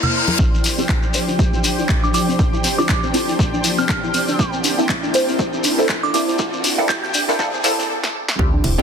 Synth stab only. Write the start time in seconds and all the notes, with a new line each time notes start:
0.78 C4 D4 E4 F4 G4
1.14 C4 D4 E4 F4 C5
1.39 C4 D4 E4 F4 G4
1.52 C4 D4 E4 F4 C5
2.78 C4 D4 E4 F4 G4
3.13 C4 D4 E4 F4 A4
4.78 A#3 C4 D4 E4 A4
5.14 A#3 C4 D4 E4 C5
5.78 A#3 C4 D4 E4 A4
6.14 A#3 C4 D4 E4 C5
6.78 A#3 C4 D4 E4 A4
7.28 A#3 C4 D4 E4 A4
7.39 A#3 C4 D4 E4 A4
7.64 A#3 C4 D4 E4 A4
8.39 C4 D4 E4 F4 G4
8.78 C4 D4 E4 F4 G4